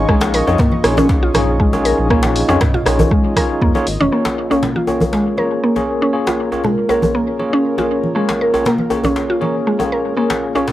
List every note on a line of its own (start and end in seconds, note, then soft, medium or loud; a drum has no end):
0.00 4.08 F4 medium
0.00 4.08 D#5 medium
0.00 4.08 C#6 medium
0.09 0.42 A#1 loud
0.09 0.21 G#3 medium
0.09 0.44 C#4 medium
0.09 0.44 D#4 medium
0.09 0.44 F4 medium
0.09 0.44 G#4 medium
0.09 0.44 C#5 medium
0.09 kick loud
0.09 cross-stick medium
0.21 muted conga medium
0.21 djembe slap loud
0.34 0.41 A#4 medium
0.34 open hi-hat medium
0.47 0.56 F2 loud
0.47 0.57 C#4 medium
0.47 0.57 D#4 medium
0.47 0.57 F4 medium
0.47 0.57 G#4 medium
0.47 0.57 C#5 medium
0.47 djembe tone medium
0.58 0.71 A#3 medium
0.58 kick loud
0.58 mid tom medium
0.58 muted conga soft
0.58 djembe slap medium
0.58 low conga medium
0.71 high conga medium
0.84 1.30 A#1 medium
0.84 1.32 C#4 medium
0.84 1.32 D#4 medium
0.84 1.32 F4 medium
0.84 1.32 G#4 medium
0.84 1.32 C#5 medium
0.84 cross-stick medium
0.84 open hi-hat medium
0.84 djembe tone medium
0.97 1.08 C#4 loud
0.97 muted conga medium
0.97 high conga medium
0.97 djembe bass medium
1.09 kick loud
1.09 djembe slap medium
1.23 1.29 F4 medium
1.34 1.93 A#1 loud
1.34 1.70 C#4 medium
1.34 1.70 D#4 medium
1.34 1.70 F4 medium
1.34 1.70 G#4 medium
1.34 1.70 C#5 medium
1.34 cross-stick medium
1.34 mid tom medium
1.34 open hi-hat medium
1.34 muted conga soft
1.34 high conga medium
1.60 1.72 G#3 medium
1.60 kick loud
1.73 2.08 C#4 medium
1.73 2.08 D#4 medium
1.73 2.07 F4 medium
1.73 2.07 G#4 medium
1.73 2.08 C#5 medium
1.73 muted conga medium
1.73 djembe tone medium
1.85 1.92 A#4 medium
1.85 open hi-hat medium
1.98 2.44 A#1 medium
2.10 2.22 A#3 medium
2.10 2.46 C#4 medium
2.10 2.46 D#4 medium
2.10 2.46 F4 medium
2.10 2.46 G#4 medium
2.10 2.46 C#5 medium
2.10 kick loud
2.10 cross-stick medium
2.23 djembe slap medium
2.23 muted conga medium
2.36 open hi-hat medium
2.49 2.58 F2 loud
2.49 2.59 C#4 medium
2.49 2.60 C#4 loud
2.49 2.59 D#4 medium
2.49 2.59 F4 medium
2.49 2.59 G#4 medium
2.49 2.59 C#5 loud
2.49 djembe tone medium
2.61 kick loud
2.61 cross-stick medium
2.61 mid tom loud
2.61 muted conga soft
2.61 djembe slap medium
2.61 low conga medium
2.74 2.81 F4 medium
2.74 low conga medium
2.86 3.05 A#1 medium
2.86 3.33 C#4 medium
2.86 3.33 D#4 medium
2.86 3.33 F4 medium
2.86 3.33 G#4 medium
2.86 3.33 C#5 medium
2.86 cross-stick medium
2.86 open hi-hat medium
2.86 djembe tone medium
2.99 muted conga medium
2.99 high conga medium
2.99 djembe bass loud
3.11 3.23 G#3 medium
3.11 kick loud
3.36 3.72 C#4 medium
3.36 3.72 D#4 medium
3.36 3.72 F4 medium
3.36 3.72 G#4 medium
3.36 3.44 A#4 medium
3.36 3.72 C#5 loud
3.36 kick medium
3.36 cross-stick medium
3.36 open hi-hat medium
3.36 muted conga soft
3.36 high conga medium
3.61 3.72 F2 medium
3.61 3.74 A#3 medium
3.61 kick loud
3.75 3.85 C#4 medium
3.75 3.85 D#4 medium
3.75 3.85 F4 medium
3.75 3.85 G#4 medium
3.75 3.85 C#5 loud
3.75 muted conga medium
3.75 djembe tone medium
3.87 3.97 G#1 medium
3.87 open hi-hat medium
4.00 4.09 F1 medium
4.00 4.11 C#4 loud
4.00 high conga medium
4.12 4.47 A#3 medium
4.12 10.72 A#3 medium
4.12 4.24 A#3 medium
4.12 4.47 C#4 medium
4.12 4.47 F4 medium
4.12 10.72 F4 medium
4.12 4.47 G#4 medium
4.12 10.72 A#4 medium
4.12 4.47 C#5 medium
4.25 djembe slap loud
4.25 muted conga soft
4.50 4.61 A#3 medium
4.50 4.61 C#4 medium
4.50 4.62 C#4 medium
4.50 4.61 F4 medium
4.50 4.61 G#4 medium
4.50 4.61 C#5 medium
4.50 djembe tone medium
4.63 djembe slap medium
4.63 muted conga soft
4.63 low conga medium
4.76 4.82 F4 medium
4.76 high conga medium
4.87 5.35 A#3 medium
4.87 5.35 C#4 medium
4.87 5.35 F4 medium
4.87 5.35 G#4 medium
4.87 5.35 C#5 medium
4.87 djembe tone medium
5.01 muted conga medium
5.01 high conga medium
5.01 djembe bass medium
5.13 5.25 G#3 medium
5.13 djembe slap medium
5.37 5.73 A#3 medium
5.37 5.73 C#4 medium
5.37 5.73 F4 medium
5.37 5.73 G#4 medium
5.37 5.45 A#4 medium
5.37 5.73 C#5 medium
5.37 muted conga soft
5.37 high conga medium
5.64 5.75 A#3 medium
5.76 6.11 A#3 medium
5.76 6.11 C#4 medium
5.76 6.11 F4 medium
5.76 6.11 G#4 medium
5.76 6.11 C#5 medium
5.76 muted conga soft
5.76 djembe tone medium
6.02 6.13 C#4 loud
6.13 6.49 A#3 medium
6.13 6.49 C#4 medium
6.13 6.49 F4 medium
6.13 6.49 G#4 medium
6.13 6.49 C#5 medium
6.27 6.34 F4 medium
6.27 muted conga soft
6.27 djembe slap medium
6.52 6.62 A#3 medium
6.52 6.62 C#4 medium
6.52 6.62 F4 medium
6.52 6.62 G#4 medium
6.52 6.62 C#5 medium
6.52 djembe tone medium
6.64 6.76 G#3 medium
6.64 muted conga soft
6.64 low conga medium
6.89 7.37 A#3 medium
6.89 7.37 C#4 medium
6.89 7.37 F4 medium
6.89 7.37 G#4 medium
6.89 6.97 A#4 medium
6.89 7.37 C#5 medium
6.89 djembe tone medium
7.02 muted conga soft
7.02 high conga medium
7.02 djembe bass medium
7.15 7.27 A#3 medium
7.39 7.75 A#3 medium
7.39 7.75 C#4 medium
7.39 7.75 F4 medium
7.39 7.75 G#4 medium
7.39 7.75 C#5 medium
7.39 muted conga soft
7.53 7.64 C#4 loud
7.78 8.12 A#3 medium
7.78 8.12 C#4 medium
7.78 8.12 F4 medium
7.78 7.85 F4 medium
7.78 8.12 G#4 medium
7.78 8.12 C#5 medium
7.78 muted conga soft
7.78 djembe tone medium
8.04 high conga medium
8.15 8.28 G#3 medium
8.15 8.50 A#3 medium
8.15 8.50 C#4 medium
8.15 8.51 F4 medium
8.15 8.50 G#4 medium
8.15 8.50 C#5 medium
8.29 djembe slap medium
8.29 muted conga soft
8.41 8.48 A#4 medium
8.53 8.64 A#3 medium
8.53 8.64 C#4 medium
8.53 8.64 F4 medium
8.53 8.64 G#4 medium
8.53 8.64 C#5 medium
8.53 djembe tone medium
8.65 8.78 A#3 medium
8.65 muted conga soft
8.65 djembe slap medium
8.65 low conga medium
8.78 high conga medium
8.90 9.38 A#3 medium
8.90 9.38 C#4 medium
8.90 9.38 F4 medium
8.90 9.38 G#4 medium
8.90 9.38 C#5 medium
8.90 djembe tone medium
9.03 9.15 C#4 loud
9.03 muted conga soft
9.03 high conga medium
9.03 djembe bass medium
9.16 djembe slap medium
9.30 9.36 F4 medium
9.41 9.77 A#3 medium
9.41 9.77 C#4 medium
9.41 9.77 F4 medium
9.41 9.77 G#4 medium
9.41 9.77 C#5 medium
9.41 muted conga soft
9.41 high conga medium
9.67 9.79 G#3 medium
9.79 10.14 A#3 medium
9.79 10.14 C#4 medium
9.79 10.14 F4 medium
9.79 10.14 G#4 medium
9.79 10.14 C#5 medium
9.79 muted conga soft
9.79 djembe tone medium
9.92 9.99 A#4 medium
10.17 10.52 A#3 medium
10.17 10.29 A#3 medium
10.17 10.52 C#4 medium
10.17 10.52 F4 medium
10.17 10.52 G#4 medium
10.17 10.52 C#5 medium
10.30 djembe slap medium
10.30 muted conga soft
10.55 10.66 A#3 medium
10.55 10.66 C#4 medium
10.55 10.66 F4 medium
10.55 10.66 G#4 medium
10.55 10.66 C#5 medium
10.55 djembe tone medium
10.68 muted conga soft
10.68 djembe slap medium
10.68 low conga medium